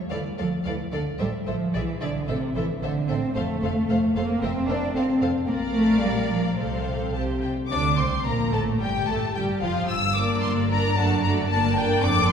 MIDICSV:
0, 0, Header, 1, 6, 480
1, 0, Start_track
1, 0, Tempo, 542986
1, 99, Time_signature, 2, 2, 24, 8
1, 2497, Tempo, 532860
1, 5377, Tempo, 559180
1, 7297, Tempo, 540054
1, 10907, End_track
2, 0, Start_track
2, 0, Title_t, "Violin section"
2, 0, Program_c, 0, 48
2, 97, Note_on_c, 0, 77, 47
2, 168, Note_off_c, 0, 77, 0
2, 337, Note_on_c, 0, 77, 37
2, 408, Note_off_c, 0, 77, 0
2, 571, Note_on_c, 0, 77, 44
2, 642, Note_off_c, 0, 77, 0
2, 822, Note_on_c, 0, 77, 41
2, 892, Note_off_c, 0, 77, 0
2, 1057, Note_on_c, 0, 76, 48
2, 1128, Note_off_c, 0, 76, 0
2, 1303, Note_on_c, 0, 76, 39
2, 1373, Note_off_c, 0, 76, 0
2, 1542, Note_on_c, 0, 76, 45
2, 1613, Note_off_c, 0, 76, 0
2, 1777, Note_on_c, 0, 76, 45
2, 1848, Note_off_c, 0, 76, 0
2, 2014, Note_on_c, 0, 76, 52
2, 2084, Note_off_c, 0, 76, 0
2, 2266, Note_on_c, 0, 76, 42
2, 2337, Note_off_c, 0, 76, 0
2, 2504, Note_on_c, 0, 76, 50
2, 2576, Note_off_c, 0, 76, 0
2, 2736, Note_on_c, 0, 76, 50
2, 2808, Note_off_c, 0, 76, 0
2, 2983, Note_on_c, 0, 77, 55
2, 3056, Note_off_c, 0, 77, 0
2, 3225, Note_on_c, 0, 77, 46
2, 3297, Note_off_c, 0, 77, 0
2, 3464, Note_on_c, 0, 77, 53
2, 3537, Note_off_c, 0, 77, 0
2, 3707, Note_on_c, 0, 77, 54
2, 3779, Note_off_c, 0, 77, 0
2, 3944, Note_on_c, 0, 76, 56
2, 4016, Note_off_c, 0, 76, 0
2, 4166, Note_on_c, 0, 76, 44
2, 4238, Note_off_c, 0, 76, 0
2, 4420, Note_on_c, 0, 77, 54
2, 4492, Note_off_c, 0, 77, 0
2, 4658, Note_on_c, 0, 77, 49
2, 4730, Note_off_c, 0, 77, 0
2, 4895, Note_on_c, 0, 77, 60
2, 5826, Note_off_c, 0, 77, 0
2, 5856, Note_on_c, 0, 77, 49
2, 6334, Note_off_c, 0, 77, 0
2, 6345, Note_on_c, 0, 81, 54
2, 6414, Note_off_c, 0, 81, 0
2, 6584, Note_on_c, 0, 79, 42
2, 6653, Note_off_c, 0, 79, 0
2, 6818, Note_on_c, 0, 86, 71
2, 7041, Note_off_c, 0, 86, 0
2, 7061, Note_on_c, 0, 84, 56
2, 7296, Note_off_c, 0, 84, 0
2, 7299, Note_on_c, 0, 82, 62
2, 7540, Note_off_c, 0, 82, 0
2, 7540, Note_on_c, 0, 81, 63
2, 7611, Note_off_c, 0, 81, 0
2, 7782, Note_on_c, 0, 79, 62
2, 8017, Note_off_c, 0, 79, 0
2, 8023, Note_on_c, 0, 81, 59
2, 8264, Note_off_c, 0, 81, 0
2, 8267, Note_on_c, 0, 79, 61
2, 8338, Note_off_c, 0, 79, 0
2, 8506, Note_on_c, 0, 77, 66
2, 8744, Note_off_c, 0, 77, 0
2, 8747, Note_on_c, 0, 88, 82
2, 8985, Note_off_c, 0, 88, 0
2, 8988, Note_on_c, 0, 86, 64
2, 9221, Note_on_c, 0, 84, 68
2, 9231, Note_off_c, 0, 86, 0
2, 9292, Note_off_c, 0, 84, 0
2, 9473, Note_on_c, 0, 82, 76
2, 9704, Note_on_c, 0, 81, 78
2, 9707, Note_off_c, 0, 82, 0
2, 9938, Note_on_c, 0, 82, 72
2, 9945, Note_off_c, 0, 81, 0
2, 10009, Note_off_c, 0, 82, 0
2, 10174, Note_on_c, 0, 81, 82
2, 10411, Note_off_c, 0, 81, 0
2, 10417, Note_on_c, 0, 79, 82
2, 10657, Note_off_c, 0, 79, 0
2, 10659, Note_on_c, 0, 86, 95
2, 10898, Note_off_c, 0, 86, 0
2, 10907, End_track
3, 0, Start_track
3, 0, Title_t, "Violin section"
3, 0, Program_c, 1, 48
3, 95, Note_on_c, 1, 74, 43
3, 165, Note_off_c, 1, 74, 0
3, 340, Note_on_c, 1, 74, 39
3, 410, Note_off_c, 1, 74, 0
3, 580, Note_on_c, 1, 74, 40
3, 651, Note_off_c, 1, 74, 0
3, 821, Note_on_c, 1, 74, 42
3, 891, Note_off_c, 1, 74, 0
3, 1053, Note_on_c, 1, 72, 46
3, 1123, Note_off_c, 1, 72, 0
3, 1292, Note_on_c, 1, 72, 39
3, 1362, Note_off_c, 1, 72, 0
3, 1534, Note_on_c, 1, 74, 41
3, 1605, Note_off_c, 1, 74, 0
3, 1779, Note_on_c, 1, 74, 46
3, 1850, Note_off_c, 1, 74, 0
3, 2014, Note_on_c, 1, 72, 51
3, 2085, Note_off_c, 1, 72, 0
3, 2257, Note_on_c, 1, 72, 47
3, 2328, Note_off_c, 1, 72, 0
3, 2496, Note_on_c, 1, 72, 50
3, 2568, Note_off_c, 1, 72, 0
3, 2737, Note_on_c, 1, 72, 51
3, 2809, Note_off_c, 1, 72, 0
3, 2974, Note_on_c, 1, 72, 53
3, 3046, Note_off_c, 1, 72, 0
3, 3218, Note_on_c, 1, 72, 47
3, 3290, Note_off_c, 1, 72, 0
3, 3464, Note_on_c, 1, 72, 48
3, 3536, Note_off_c, 1, 72, 0
3, 3702, Note_on_c, 1, 72, 50
3, 3774, Note_off_c, 1, 72, 0
3, 3940, Note_on_c, 1, 72, 57
3, 4013, Note_off_c, 1, 72, 0
3, 4187, Note_on_c, 1, 72, 52
3, 4259, Note_off_c, 1, 72, 0
3, 4414, Note_on_c, 1, 72, 49
3, 4486, Note_off_c, 1, 72, 0
3, 4652, Note_on_c, 1, 72, 49
3, 4724, Note_off_c, 1, 72, 0
3, 4895, Note_on_c, 1, 74, 54
3, 5826, Note_off_c, 1, 74, 0
3, 5857, Note_on_c, 1, 72, 46
3, 6338, Note_off_c, 1, 72, 0
3, 6348, Note_on_c, 1, 72, 44
3, 6647, Note_off_c, 1, 72, 0
3, 6828, Note_on_c, 1, 74, 62
3, 6897, Note_off_c, 1, 74, 0
3, 7067, Note_on_c, 1, 72, 49
3, 7293, Note_on_c, 1, 70, 52
3, 7295, Note_off_c, 1, 72, 0
3, 7364, Note_off_c, 1, 70, 0
3, 7533, Note_on_c, 1, 69, 58
3, 7604, Note_off_c, 1, 69, 0
3, 7788, Note_on_c, 1, 67, 54
3, 8019, Note_on_c, 1, 69, 52
3, 8021, Note_off_c, 1, 67, 0
3, 8090, Note_off_c, 1, 69, 0
3, 8269, Note_on_c, 1, 67, 53
3, 8504, Note_off_c, 1, 67, 0
3, 8509, Note_on_c, 1, 65, 56
3, 8746, Note_off_c, 1, 65, 0
3, 8993, Note_on_c, 1, 74, 45
3, 8995, Note_on_c, 1, 70, 44
3, 9464, Note_off_c, 1, 74, 0
3, 9465, Note_off_c, 1, 70, 0
3, 9477, Note_on_c, 1, 70, 49
3, 9479, Note_on_c, 1, 74, 47
3, 9702, Note_off_c, 1, 74, 0
3, 9708, Note_off_c, 1, 70, 0
3, 9712, Note_on_c, 1, 74, 46
3, 9714, Note_on_c, 1, 66, 49
3, 9938, Note_off_c, 1, 74, 0
3, 9941, Note_off_c, 1, 66, 0
3, 9949, Note_on_c, 1, 74, 50
3, 9951, Note_on_c, 1, 66, 49
3, 10172, Note_off_c, 1, 74, 0
3, 10179, Note_on_c, 1, 70, 48
3, 10182, Note_off_c, 1, 66, 0
3, 10182, Note_on_c, 1, 74, 50
3, 10414, Note_off_c, 1, 70, 0
3, 10415, Note_off_c, 1, 74, 0
3, 10425, Note_on_c, 1, 74, 59
3, 10426, Note_on_c, 1, 70, 55
3, 10646, Note_off_c, 1, 74, 0
3, 10657, Note_off_c, 1, 70, 0
3, 10657, Note_on_c, 1, 74, 66
3, 10658, Note_on_c, 1, 69, 66
3, 10907, Note_off_c, 1, 69, 0
3, 10907, Note_off_c, 1, 74, 0
3, 10907, End_track
4, 0, Start_track
4, 0, Title_t, "Viola section"
4, 0, Program_c, 2, 48
4, 100, Note_on_c, 2, 69, 44
4, 170, Note_off_c, 2, 69, 0
4, 350, Note_on_c, 2, 69, 42
4, 421, Note_off_c, 2, 69, 0
4, 590, Note_on_c, 2, 69, 45
4, 661, Note_off_c, 2, 69, 0
4, 828, Note_on_c, 2, 69, 41
4, 899, Note_off_c, 2, 69, 0
4, 1068, Note_on_c, 2, 69, 47
4, 1138, Note_off_c, 2, 69, 0
4, 1297, Note_on_c, 2, 69, 44
4, 1368, Note_off_c, 2, 69, 0
4, 1541, Note_on_c, 2, 68, 46
4, 1612, Note_off_c, 2, 68, 0
4, 1785, Note_on_c, 2, 68, 45
4, 1856, Note_off_c, 2, 68, 0
4, 2028, Note_on_c, 2, 69, 50
4, 2099, Note_off_c, 2, 69, 0
4, 2261, Note_on_c, 2, 69, 46
4, 2332, Note_off_c, 2, 69, 0
4, 2503, Note_on_c, 2, 69, 50
4, 2575, Note_off_c, 2, 69, 0
4, 2746, Note_on_c, 2, 69, 48
4, 2818, Note_off_c, 2, 69, 0
4, 2980, Note_on_c, 2, 69, 54
4, 3052, Note_off_c, 2, 69, 0
4, 3219, Note_on_c, 2, 69, 51
4, 3291, Note_off_c, 2, 69, 0
4, 3463, Note_on_c, 2, 69, 51
4, 3535, Note_off_c, 2, 69, 0
4, 3700, Note_on_c, 2, 69, 50
4, 3772, Note_off_c, 2, 69, 0
4, 3932, Note_on_c, 2, 70, 54
4, 4004, Note_off_c, 2, 70, 0
4, 4164, Note_on_c, 2, 70, 52
4, 4236, Note_off_c, 2, 70, 0
4, 4407, Note_on_c, 2, 69, 50
4, 4479, Note_off_c, 2, 69, 0
4, 4646, Note_on_c, 2, 69, 47
4, 4718, Note_off_c, 2, 69, 0
4, 4885, Note_on_c, 2, 70, 57
4, 5821, Note_off_c, 2, 70, 0
4, 5862, Note_on_c, 2, 69, 46
4, 6343, Note_on_c, 2, 67, 43
4, 6347, Note_off_c, 2, 69, 0
4, 6650, Note_off_c, 2, 67, 0
4, 6823, Note_on_c, 2, 62, 62
4, 7044, Note_off_c, 2, 62, 0
4, 7059, Note_on_c, 2, 60, 54
4, 7296, Note_off_c, 2, 60, 0
4, 7304, Note_on_c, 2, 58, 55
4, 7537, Note_off_c, 2, 58, 0
4, 7542, Note_on_c, 2, 57, 51
4, 7781, Note_on_c, 2, 55, 55
4, 7782, Note_off_c, 2, 57, 0
4, 7852, Note_off_c, 2, 55, 0
4, 8025, Note_on_c, 2, 57, 54
4, 8258, Note_on_c, 2, 55, 52
4, 8260, Note_off_c, 2, 57, 0
4, 8499, Note_off_c, 2, 55, 0
4, 8509, Note_on_c, 2, 53, 58
4, 8751, Note_off_c, 2, 53, 0
4, 8991, Note_on_c, 2, 62, 45
4, 8992, Note_on_c, 2, 58, 46
4, 9461, Note_off_c, 2, 58, 0
4, 9463, Note_off_c, 2, 62, 0
4, 9471, Note_on_c, 2, 58, 47
4, 9472, Note_on_c, 2, 62, 48
4, 9706, Note_off_c, 2, 58, 0
4, 9706, Note_off_c, 2, 62, 0
4, 9715, Note_on_c, 2, 57, 49
4, 9715, Note_on_c, 2, 62, 47
4, 9937, Note_off_c, 2, 57, 0
4, 9938, Note_off_c, 2, 62, 0
4, 9948, Note_on_c, 2, 57, 53
4, 9949, Note_on_c, 2, 62, 48
4, 10169, Note_off_c, 2, 62, 0
4, 10180, Note_off_c, 2, 57, 0
4, 10180, Note_on_c, 2, 62, 51
4, 10183, Note_on_c, 2, 58, 54
4, 10412, Note_off_c, 2, 58, 0
4, 10412, Note_off_c, 2, 62, 0
4, 10423, Note_on_c, 2, 58, 53
4, 10423, Note_on_c, 2, 62, 54
4, 10650, Note_off_c, 2, 62, 0
4, 10655, Note_off_c, 2, 58, 0
4, 10659, Note_on_c, 2, 60, 65
4, 10660, Note_on_c, 2, 62, 60
4, 10907, Note_off_c, 2, 60, 0
4, 10907, Note_off_c, 2, 62, 0
4, 10907, End_track
5, 0, Start_track
5, 0, Title_t, "Cello section"
5, 0, Program_c, 3, 48
5, 97, Note_on_c, 3, 52, 56
5, 168, Note_off_c, 3, 52, 0
5, 341, Note_on_c, 3, 53, 55
5, 411, Note_off_c, 3, 53, 0
5, 581, Note_on_c, 3, 52, 60
5, 651, Note_off_c, 3, 52, 0
5, 821, Note_on_c, 3, 50, 55
5, 891, Note_off_c, 3, 50, 0
5, 1059, Note_on_c, 3, 55, 67
5, 1130, Note_off_c, 3, 55, 0
5, 1298, Note_on_c, 3, 53, 54
5, 1535, Note_off_c, 3, 53, 0
5, 1539, Note_on_c, 3, 52, 60
5, 1777, Note_on_c, 3, 50, 59
5, 1779, Note_off_c, 3, 52, 0
5, 2012, Note_off_c, 3, 50, 0
5, 2016, Note_on_c, 3, 48, 64
5, 2251, Note_off_c, 3, 48, 0
5, 2251, Note_on_c, 3, 52, 69
5, 2321, Note_off_c, 3, 52, 0
5, 2495, Note_on_c, 3, 50, 67
5, 2733, Note_off_c, 3, 50, 0
5, 2733, Note_on_c, 3, 60, 74
5, 2971, Note_on_c, 3, 57, 74
5, 2978, Note_off_c, 3, 60, 0
5, 3680, Note_off_c, 3, 57, 0
5, 3697, Note_on_c, 3, 58, 77
5, 3930, Note_off_c, 3, 58, 0
5, 3933, Note_on_c, 3, 60, 78
5, 4169, Note_on_c, 3, 62, 78
5, 4173, Note_off_c, 3, 60, 0
5, 4409, Note_on_c, 3, 60, 74
5, 4410, Note_off_c, 3, 62, 0
5, 4644, Note_off_c, 3, 60, 0
5, 4883, Note_on_c, 3, 58, 74
5, 4955, Note_off_c, 3, 58, 0
5, 5127, Note_on_c, 3, 57, 75
5, 5370, Note_off_c, 3, 57, 0
5, 5374, Note_on_c, 3, 55, 70
5, 5614, Note_off_c, 3, 55, 0
5, 5616, Note_on_c, 3, 53, 59
5, 5685, Note_off_c, 3, 53, 0
5, 5860, Note_on_c, 3, 48, 52
5, 6574, Note_off_c, 3, 48, 0
5, 6828, Note_on_c, 3, 50, 59
5, 7047, Note_off_c, 3, 50, 0
5, 7069, Note_on_c, 3, 48, 50
5, 7300, Note_off_c, 3, 48, 0
5, 7303, Note_on_c, 3, 46, 55
5, 7541, Note_on_c, 3, 45, 52
5, 7542, Note_off_c, 3, 46, 0
5, 7781, Note_off_c, 3, 45, 0
5, 7783, Note_on_c, 3, 43, 52
5, 8018, Note_off_c, 3, 43, 0
5, 8024, Note_on_c, 3, 45, 54
5, 8095, Note_off_c, 3, 45, 0
5, 8264, Note_on_c, 3, 43, 50
5, 8335, Note_off_c, 3, 43, 0
5, 8506, Note_on_c, 3, 41, 49
5, 8578, Note_off_c, 3, 41, 0
5, 8749, Note_on_c, 3, 43, 52
5, 9176, Note_off_c, 3, 43, 0
5, 9233, Note_on_c, 3, 43, 55
5, 9655, Note_off_c, 3, 43, 0
5, 9709, Note_on_c, 3, 42, 62
5, 10128, Note_off_c, 3, 42, 0
5, 10181, Note_on_c, 3, 43, 64
5, 10601, Note_off_c, 3, 43, 0
5, 10659, Note_on_c, 3, 41, 67
5, 10907, Note_off_c, 3, 41, 0
5, 10907, End_track
6, 0, Start_track
6, 0, Title_t, "Double bass section"
6, 0, Program_c, 4, 48
6, 101, Note_on_c, 4, 38, 49
6, 172, Note_off_c, 4, 38, 0
6, 345, Note_on_c, 4, 38, 48
6, 416, Note_off_c, 4, 38, 0
6, 584, Note_on_c, 4, 38, 46
6, 654, Note_off_c, 4, 38, 0
6, 823, Note_on_c, 4, 38, 46
6, 894, Note_off_c, 4, 38, 0
6, 1062, Note_on_c, 4, 33, 53
6, 1133, Note_off_c, 4, 33, 0
6, 1305, Note_on_c, 4, 33, 46
6, 1376, Note_off_c, 4, 33, 0
6, 1542, Note_on_c, 4, 35, 51
6, 1613, Note_off_c, 4, 35, 0
6, 1782, Note_on_c, 4, 35, 51
6, 1853, Note_off_c, 4, 35, 0
6, 2017, Note_on_c, 4, 33, 61
6, 2088, Note_off_c, 4, 33, 0
6, 2253, Note_on_c, 4, 33, 55
6, 2324, Note_off_c, 4, 33, 0
6, 2493, Note_on_c, 4, 33, 51
6, 2565, Note_off_c, 4, 33, 0
6, 2735, Note_on_c, 4, 33, 55
6, 2807, Note_off_c, 4, 33, 0
6, 2978, Note_on_c, 4, 29, 63
6, 3050, Note_off_c, 4, 29, 0
6, 3220, Note_on_c, 4, 29, 57
6, 3292, Note_off_c, 4, 29, 0
6, 3462, Note_on_c, 4, 29, 56
6, 3534, Note_off_c, 4, 29, 0
6, 3696, Note_on_c, 4, 29, 58
6, 3768, Note_off_c, 4, 29, 0
6, 3936, Note_on_c, 4, 29, 64
6, 4008, Note_off_c, 4, 29, 0
6, 4172, Note_on_c, 4, 29, 59
6, 4244, Note_off_c, 4, 29, 0
6, 4412, Note_on_c, 4, 29, 60
6, 4484, Note_off_c, 4, 29, 0
6, 4652, Note_on_c, 4, 29, 51
6, 4724, Note_off_c, 4, 29, 0
6, 4886, Note_on_c, 4, 34, 60
6, 5822, Note_off_c, 4, 34, 0
6, 5856, Note_on_c, 4, 36, 50
6, 6337, Note_off_c, 4, 36, 0
6, 6347, Note_on_c, 4, 36, 46
6, 6646, Note_off_c, 4, 36, 0
6, 6831, Note_on_c, 4, 38, 62
6, 7048, Note_off_c, 4, 38, 0
6, 7063, Note_on_c, 4, 36, 53
6, 7291, Note_on_c, 4, 34, 54
6, 7297, Note_off_c, 4, 36, 0
6, 7536, Note_off_c, 4, 34, 0
6, 7541, Note_on_c, 4, 33, 54
6, 7781, Note_off_c, 4, 33, 0
6, 7782, Note_on_c, 4, 31, 55
6, 8017, Note_off_c, 4, 31, 0
6, 8025, Note_on_c, 4, 33, 54
6, 8096, Note_off_c, 4, 33, 0
6, 8270, Note_on_c, 4, 31, 55
6, 8341, Note_off_c, 4, 31, 0
6, 8508, Note_on_c, 4, 29, 50
6, 8580, Note_off_c, 4, 29, 0
6, 8753, Note_on_c, 4, 31, 57
6, 9178, Note_off_c, 4, 31, 0
6, 9235, Note_on_c, 4, 31, 54
6, 9656, Note_off_c, 4, 31, 0
6, 9710, Note_on_c, 4, 30, 62
6, 10129, Note_off_c, 4, 30, 0
6, 10185, Note_on_c, 4, 31, 65
6, 10603, Note_off_c, 4, 31, 0
6, 10660, Note_on_c, 4, 29, 63
6, 10907, Note_off_c, 4, 29, 0
6, 10907, End_track
0, 0, End_of_file